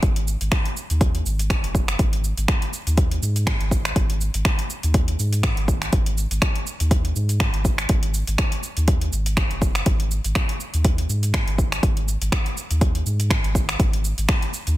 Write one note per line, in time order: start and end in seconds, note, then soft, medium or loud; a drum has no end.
0.03 0.36 G#1 loud
0.03 kick loud
0.03 closed hi-hat medium
0.03 cabasa soft
0.16 closed hi-hat soft
0.28 cabasa loud
0.41 0.49 G#1 medium
0.41 closed hi-hat soft
0.41 cabasa medium
0.52 finger snap loud
0.52 kick loud
0.52 closed hi-hat medium
0.52 cabasa soft
0.65 closed hi-hat soft
0.77 cabasa medium
0.90 1.22 D#2 medium
0.90 closed hi-hat soft
0.90 cabasa medium
1.01 kick loud
1.01 closed hi-hat medium
1.01 cabasa soft
1.15 closed hi-hat soft
1.26 1.59 G#1 loud
1.26 cabasa loud
1.39 closed hi-hat soft
1.39 cabasa medium
1.50 finger snap loud
1.50 kick loud
1.50 closed hi-hat medium
1.50 cabasa soft
1.64 1.96 F#1 loud
1.64 closed hi-hat soft
1.75 kick medium
1.75 cabasa loud
1.88 finger snap medium
1.88 closed hi-hat soft
1.88 cabasa medium
1.99 2.33 G#1 loud
1.99 kick loud
1.99 closed hi-hat medium
1.99 cabasa soft
2.13 closed hi-hat soft
2.24 cabasa medium
2.37 2.46 G#1 medium
2.37 closed hi-hat soft
2.37 cabasa medium
2.48 finger snap loud
2.48 kick loud
2.48 closed hi-hat medium
2.48 cabasa soft
2.62 closed hi-hat soft
2.73 cabasa medium
2.87 3.19 D#2 medium
2.87 closed hi-hat soft
2.87 cabasa medium
2.97 kick loud
2.97 closed hi-hat medium
2.97 cabasa soft
3.11 closed hi-hat soft
3.22 3.56 G#2 medium
3.22 cabasa medium
3.36 closed hi-hat soft
3.36 cabasa medium
3.47 finger snap loud
3.47 kick loud
3.47 closed hi-hat medium
3.47 cabasa soft
3.60 3.92 G#1 loud
3.60 closed hi-hat soft
3.71 kick medium
3.71 cabasa loud
3.85 finger snap medium
3.85 closed hi-hat soft
3.85 cabasa medium
3.96 4.30 G#1 loud
3.96 kick loud
3.96 closed hi-hat medium
3.96 cabasa soft
4.10 closed hi-hat soft
4.21 cabasa medium
4.34 4.43 G#1 medium
4.34 closed hi-hat soft
4.34 cabasa medium
4.45 finger snap loud
4.45 kick loud
4.45 closed hi-hat medium
4.45 cabasa soft
4.59 closed hi-hat soft
4.70 cabasa medium
4.83 5.15 D#2 medium
4.83 closed hi-hat soft
4.83 cabasa medium
4.94 kick loud
4.94 closed hi-hat medium
4.94 cabasa soft
5.08 closed hi-hat soft
5.19 5.53 G#2 medium
5.19 cabasa medium
5.33 closed hi-hat soft
5.33 cabasa medium
5.43 finger snap loud
5.43 kick loud
5.43 closed hi-hat medium
5.43 cabasa soft
5.57 5.89 G#1 loud
5.57 closed hi-hat soft
5.68 kick medium
5.68 cabasa medium
5.82 finger snap medium
5.82 closed hi-hat soft
5.82 cabasa medium
5.93 6.26 G#1 loud
5.93 kick loud
5.93 closed hi-hat medium
5.93 cabasa soft
6.06 closed hi-hat soft
6.18 cabasa medium
6.31 6.40 G#1 medium
6.31 closed hi-hat soft
6.31 cabasa soft
6.42 finger snap loud
6.42 kick loud
6.42 closed hi-hat medium
6.42 cabasa soft
6.55 closed hi-hat soft
6.67 cabasa medium
6.80 7.12 D#2 medium
6.80 closed hi-hat soft
6.80 cabasa soft
6.91 kick loud
6.91 closed hi-hat medium
6.91 cabasa soft
7.05 closed hi-hat soft
7.16 7.49 G#2 medium
7.16 cabasa medium
7.29 closed hi-hat soft
7.29 cabasa soft
7.40 finger snap loud
7.40 kick loud
7.40 closed hi-hat medium
7.40 cabasa soft
7.54 7.86 G#1 loud
7.54 closed hi-hat soft
7.65 kick medium
7.65 cabasa medium
7.78 finger snap medium
7.78 closed hi-hat soft
7.78 cabasa medium
7.89 8.23 G#1 loud
7.89 kick loud
7.89 closed hi-hat medium
7.89 cabasa soft
8.03 closed hi-hat soft
8.14 cabasa medium
8.27 8.36 G#1 medium
8.27 closed hi-hat soft
8.27 cabasa medium
8.38 finger snap loud
8.38 kick loud
8.38 closed hi-hat medium
8.38 cabasa soft
8.52 closed hi-hat medium
8.63 cabasa loud
8.77 9.09 D#2 medium
8.77 closed hi-hat soft
8.77 cabasa medium
8.88 kick loud
8.88 closed hi-hat medium
8.88 cabasa soft
9.01 closed hi-hat soft
9.12 9.46 G#1 medium
9.12 cabasa medium
9.26 closed hi-hat soft
9.26 cabasa medium
9.37 finger snap loud
9.37 kick loud
9.37 closed hi-hat medium
9.37 cabasa soft
9.51 9.83 F#1 medium
9.51 closed hi-hat soft
9.62 kick medium
9.62 cabasa medium
9.75 finger snap medium
9.75 closed hi-hat soft
9.75 cabasa medium
9.86 10.20 G#1 loud
9.86 kick loud
9.86 closed hi-hat medium
9.86 cabasa soft
10.00 closed hi-hat soft
10.11 cabasa loud
10.24 10.33 G#1 loud
10.24 closed hi-hat soft
10.24 cabasa medium
10.35 finger snap loud
10.35 kick loud
10.35 closed hi-hat medium
10.35 cabasa soft
10.49 closed hi-hat soft
10.60 cabasa loud
10.74 11.06 D#2 medium
10.74 closed hi-hat soft
10.74 cabasa medium
10.85 kick loud
10.85 closed hi-hat medium
10.85 cabasa soft
10.98 closed hi-hat soft
11.09 11.43 G#2 medium
11.09 cabasa medium
11.23 closed hi-hat soft
11.23 cabasa medium
11.34 finger snap loud
11.34 kick loud
11.34 closed hi-hat medium
11.34 cabasa soft
11.47 11.79 G#1 loud
11.47 closed hi-hat soft
11.58 kick medium
11.58 cabasa loud
11.72 finger snap medium
11.72 closed hi-hat soft
11.72 cabasa medium
11.83 12.17 G#1 loud
11.83 kick loud
11.83 closed hi-hat medium
11.83 cabasa soft
11.97 closed hi-hat soft
12.08 cabasa loud
12.21 12.30 G#1 medium
12.21 closed hi-hat soft
12.21 cabasa medium
12.32 finger snap loud
12.32 kick loud
12.32 closed hi-hat medium
12.32 cabasa soft
12.46 closed hi-hat soft
12.57 cabasa medium
12.71 13.02 D#2 medium
12.71 closed hi-hat soft
12.71 cabasa medium
12.81 kick loud
12.81 closed hi-hat medium
12.81 cabasa soft
12.95 closed hi-hat soft
13.06 13.40 G#2 medium
13.06 cabasa loud
13.20 closed hi-hat soft
13.20 cabasa medium
13.30 finger snap loud
13.30 kick loud
13.30 closed hi-hat medium
13.30 cabasa soft
13.44 13.76 G#1 loud
13.44 closed hi-hat soft
13.55 kick medium
13.55 cabasa loud
13.69 finger snap medium
13.69 closed hi-hat soft
13.69 cabasa medium
13.80 14.13 G#1 loud
13.80 kick loud
13.80 closed hi-hat medium
13.80 cabasa soft
13.93 closed hi-hat soft
14.05 cabasa loud
14.18 14.27 G#1 medium
14.18 closed hi-hat soft
14.18 cabasa medium
14.29 finger snap loud
14.29 kick loud
14.29 closed hi-hat medium
14.29 cabasa soft
14.42 closed hi-hat soft
14.54 cabasa loud
14.67 14.77 D#2 medium
14.67 closed hi-hat soft
14.67 cabasa medium